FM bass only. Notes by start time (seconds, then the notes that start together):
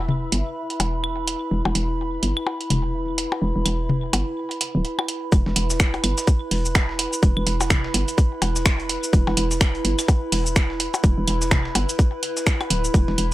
Already playing: E1
0.32 G1
0.80 E1
1.51 E1
1.65 E1
1.75 E1
2.23 G1
2.70 E1
3.42 E1
3.56 E1
3.66 E1
4.13 G1
4.75 D1
5.32 E1
5.46 E1
5.56 E1
6.04 G1
6.51 E1
7.23 E1
7.37 E1
7.47 E1
7.94 G1
8.42 E1
9.13 E1
9.27 E1
9.37 E1
9.85 G1
10.32 E1
11.04 E1
11.18 E1
11.28 E1
11.75 G1
12.70 D1
12.94 E1
13.08 E1
13.18 E1